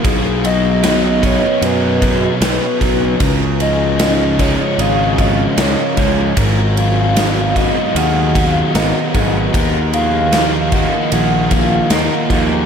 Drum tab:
RD |xxxxxxxx|xxxxxxxx|xxxxxxxx|xxxxxxxx|
SD |--o---o-|--o---o-|--o---o-|--o---o-|
BD |o--o-o-o|o--o-o-o|o--o-o-o|o--o-o-o|